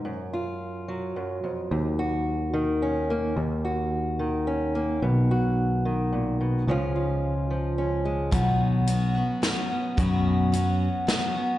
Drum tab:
HH |------|------|------|------|
SD |------|------|------|------|
BD |------|------|------|------|

HH |------|x-x-x-|x-x-x-|
SD |------|----o-|----o-|
BD |------|o-----|o-----|